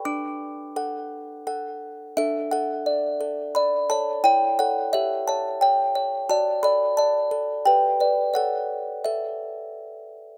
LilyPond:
\new Staff \with { instrumentName = "Music box" } { \time 3/4 \key d \major \tempo 4 = 87 << { d'''2 r4 | <a' e''>8 <a' fis''>4. <d'' b''>8 <cis'' a''>8 | <cis'' g''>8 <a' fis''>8 <g' e''>8 <cis'' a''>8 <cis'' g''>4 | <d'' a''>8 <d'' b''>8 <d'' a''>4 <b' g''>4 |
<a' fis''>4 <a' e''>4 r4 | } \\ { d'4 <a' fis''>4 <a' fis''>4 | d'4 d''8 a'4 a'8 | e'8 cis''8 cis''4 r8 cis''8 | fis'8 a'4 a'8 g'8 <b' d''>8 |
cis''2. | } >> }